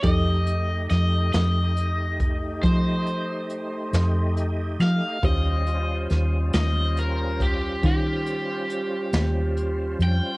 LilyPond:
<<
  \new Staff \with { instrumentName = "Overdriven electric guitar" } { \time 12/8 \key f \dorian \tempo 4. = 46 ees''4 ees''8 ees''4. c''2 r8 f''8 | ees''4. ees''8 bes'8 g'8 g'2~ g'8 g''8 | }
  \new Staff \with { instrumentName = "Upright piano" } { \time 12/8 \key f \dorian <ees' g' a' d'''>1. | <des' f' g' c''>1. | }
  \new Staff \with { instrumentName = "Tonewheel organ" } { \time 12/8 \key f \dorian <a ees' g' ees''>1. | <g des' f' c''>1. | }
  \new Staff \with { instrumentName = "Fingered electric bass" } { \clef bass \time 12/8 \key f \dorian f,4 f,8 f,4. f4. f,4 f16 r16 | ees,4 ees,8 ees,4. ees4. ees,4 f,16 r16 | }
  \new DrumStaff \with { instrumentName = "Drums" } \drummode { \time 12/8 <hh bd>8 hh8 <hh sn>8 <hh sn>8 hh8 <hh bd>8 <hh bd>8 hh8 hh8 <hh sn>8 hh8 <hh sn>8 | <hh bd>8 hh8 <hh sn>8 <hh sn>8 hh8 <hh bd>8 <hh bd>8 hh8 hh8 <hh sn>8 hh8 hh8 | }
>>